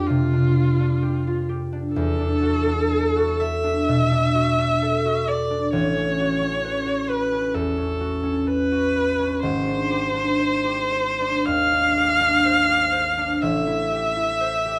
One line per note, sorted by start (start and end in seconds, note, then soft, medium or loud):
0.00 1.99 F2 medium
0.00 0.32 D4 soft
0.00 0.55 F4 medium
0.00 1.01 G4 medium
0.06 1.99 C3 medium
0.06 1.47 F4 medium
0.33 0.79 D4 soft
0.56 1.26 F4 soft
0.80 1.71 D4 soft
1.02 1.48 G4 medium
1.27 1.99 F4 soft
1.49 5.39 G4 soft
1.73 2.18 D4 soft
1.94 5.78 E2 medium
1.94 3.42 A4 medium
2.19 2.64 D4 soft
2.42 3.15 F#4 soft
2.65 3.62 D4 soft
2.91 3.40 A4 medium
3.16 4.33 F#4 medium
3.40 4.81 A4 medium
3.40 5.29 E5 medium
3.64 4.10 D4 soft
3.88 5.77 B2 medium
4.11 4.58 D4 soft
4.35 5.04 F#4 soft
4.59 5.49 D4 soft
4.82 5.26 A4 medium
5.05 6.18 F#4 soft
5.27 9.17 A4 soft
5.27 5.72 D5 medium
5.50 5.77 D4 soft
5.73 9.46 A1 medium
5.73 7.11 C#5 medium
5.97 6.40 C#4 soft
6.20 6.85 F#4 soft
6.41 7.31 C#4 soft
6.64 7.08 B4 medium
6.86 7.99 F#4 medium
7.09 8.46 B4 medium
7.09 7.55 B4 medium
7.32 7.76 C#4 soft
7.54 9.47 E2 soft
7.54 8.50 A4 medium
7.77 8.22 C#4 soft
8.00 8.70 F#4 soft
8.23 9.18 C#4 soft
8.47 8.95 B4 soft
8.47 9.42 B4 medium
8.72 9.47 F#4 soft
8.96 9.47 B4 soft
9.19 9.47 C#4 soft
9.42 13.33 G#1 medium
9.42 11.47 C5 medium
9.66 10.12 D4 soft
9.90 10.63 G4 soft
10.13 11.19 D4 soft
10.39 10.91 C5 soft
10.65 11.96 G4 soft
10.92 12.44 C5 medium
11.20 11.72 D4 soft
11.45 13.45 D#2 soft
11.45 13.43 F5 loud
11.73 12.19 D4 soft
11.97 12.67 G4 soft
12.21 13.16 D4 soft
12.45 12.91 C5 medium
12.69 13.90 G4 soft
12.92 14.39 C5 medium
13.17 13.45 D4 soft
13.41 14.79 A1 medium
13.41 14.79 E5 medium
13.67 14.15 E4 soft
13.92 14.64 G4 soft
14.16 14.79 E4 soft
14.41 14.79 C5 soft
14.66 14.79 G4 medium